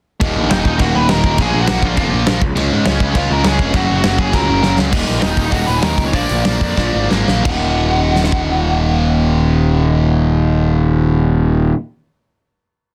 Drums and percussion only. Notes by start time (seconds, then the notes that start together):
0.21 kick, crash
0.51 snare, crash
0.65 kick
0.79 kick, crash
1.09 snare, crash
1.24 kick
1.38 kick, crash
1.67 snare, crash
1.83 kick
1.97 kick, crash
2.27 snare, crash
2.42 kick
2.57 crash
2.85 snare, crash
3.00 kick
3.15 kick, crash
3.44 snare, crash
3.59 kick
3.74 kick, crash
4.04 snare, crash
4.18 kick
4.33 kick, crash
4.63 snare
4.78 snare
4.93 kick, crash
5.08 open hi-hat
5.22 snare, open hi-hat
5.37 kick, open hi-hat
5.52 kick, open hi-hat
5.68 open hi-hat
5.83 snare, open hi-hat
5.98 kick, open hi-hat
6.13 kick, open hi-hat
6.29 open hi-hat
6.45 snare, open hi-hat
6.61 kick, open hi-hat
6.77 kick, snare
7.11 snare
7.28 snare
7.45 kick, crash
8.16 snare
8.24 snare
8.32 kick